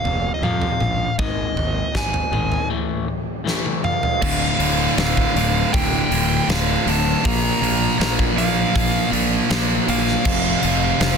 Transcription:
Already playing: F5
0.04 F1 F2 C3, floor tom
0.34 D#5
0.42 F2 C3 F3 F5, mid tom
0.62 floor tom
0.80 A#1 F2 C3, mid tom
1.18 G#1 G#2 D#3 G#3 D#5, kick, floor tom
1.55 G#1 G#2 D#3, floor tom
1.94 G#1 G#2 D#3 G#5, kick, snare
2.14 floor tom
2.31 G#1 G#2 D#3 G#3, mid tom
2.52 floor tom
2.69 A2 E3 A3
3.07 A2 E3
3.44 A2 E3 A3, snare
3.66 high tom
3.83 A2 E3 F5, mid tom
4.03 floor tom
4.22 D1 D2 A2 D3, kick, crash
4.59 D1 D2 A2 D3, open hi-hat
4.97 D1 D2 A2 D3 F5, snare, open hi-hat
5.17 kick
5.35 D1 D2 A2 D3, open hi-hat
5.72 D1 D2 A2 D3 G5, kick, open hi-hat
6.11 D1 D2 A2 D3, open hi-hat
6.48 D1 D2 A2 D3 F5, snare, open hi-hat
6.86 D1 D2 A2 D3 A5, open hi-hat
7.23 A#1 A#2 F3 A#3 A#5, kick, open hi-hat
7.61 A#1 A#2 F3 A#3, open hi-hat
7.99 A#1 A#2 F3 A#3 A#5, snare, open hi-hat
8.19 kick
8.37 A#1 A#2 F3 A#3 F5, open hi-hat
8.75 A#1 A#2 F3 A#3, kick, open hi-hat
9.11 A#1 A#2 F3 A#3, open hi-hat
9.49 A#1 A#2 F3 A#3, snare, open hi-hat
9.88 A#1 A#2 F3 A#3 F5, open hi-hat
10.07 snare
10.24 F1 F2 C3 F3, kick, crash
10.63 F1 F2 C3 F3, open hi-hat
11.00 F1 F2 C3 F3 F5, snare, open hi-hat

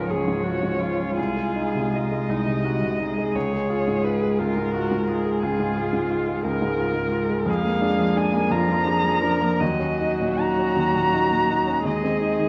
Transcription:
Already playing: C#2 G#2 F3 C#4 F4 A#4
0.10 C#2 G#4 C#5
0.28 G#2
0.44 F4 F#4
0.63 G#2
0.79 F4
0.99 C#4
1.17 C2 G#3 G#4
1.36 G#3
1.56 D#4
1.75 C3
1.95 D#4 D#5
2.11 G#3
2.29 C2 D#4
2.46 C3
2.64 D#4 F#4
2.81 C3
2.99 D#4 G#4
3.18 G#3
3.34 C#2 G#3 C#5
3.53 G#3
3.70 F4
3.87 G#2
4.04 F4 B4
4.23 G#3
4.39 C#2 F4 A#4
4.57 G#2
4.74 F4 F#4
4.91 G#2
5.08 F4 G#4
5.26 G#3
5.43 C#2 F4 G#4
5.60 G#2
5.76 F4
5.93 G#2
6.10 F4
6.28 G#3
6.44 C#2 A#4
6.62 G#2
6.78 F4
6.95 G#2
7.12 F4
7.29 G#3
7.46 F2 G#3 F5
7.50 G#4
7.64 A#3
7.81 D4
7.99 F3
8.16 D4 G#5
8.34 A#3
8.50 F2 F3 F4 A#5
8.68 F3
8.85 D4 G#4
9.04 F3
9.23 D4 A#4
9.41 A#3
9.60 D#2 F#3 F#4 D#5
9.79 C#4
10.00 D#4
10.20 A#2
10.39 D#4 A#5
10.59 C#4
10.76 D#2
10.94 A#2
11.13 D#4
11.31 A#2
11.49 D#4
11.67 C#4
11.85 D#2 G#3 G#4 D#5
12.04 C4
12.21 D#4
12.39 D#3

